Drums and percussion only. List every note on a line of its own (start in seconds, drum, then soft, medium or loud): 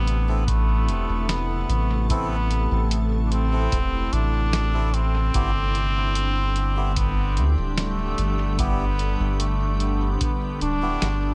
0.07 closed hi-hat soft
0.48 kick loud
0.48 closed hi-hat soft
0.89 closed hi-hat soft
1.29 snare medium
1.29 closed hi-hat medium
1.70 closed hi-hat soft
2.10 kick loud
2.10 closed hi-hat soft
2.51 closed hi-hat soft
2.91 closed hi-hat medium
3.32 closed hi-hat soft
3.72 kick loud
3.72 closed hi-hat soft
4.13 closed hi-hat soft
4.53 snare medium
4.53 closed hi-hat soft
4.94 closed hi-hat soft
5.34 kick loud
5.34 closed hi-hat medium
5.75 closed hi-hat soft
6.15 closed hi-hat soft
6.56 closed hi-hat soft
6.96 kick loud
6.96 closed hi-hat soft
7.37 closed hi-hat soft
7.78 snare medium
7.78 closed hi-hat medium
8.18 closed hi-hat soft
8.59 kick loud
8.59 closed hi-hat medium
8.99 closed hi-hat soft
9.40 closed hi-hat medium
9.80 closed hi-hat soft
10.21 kick loud
10.21 closed hi-hat medium
10.61 closed hi-hat soft
11.02 snare medium
11.02 closed hi-hat medium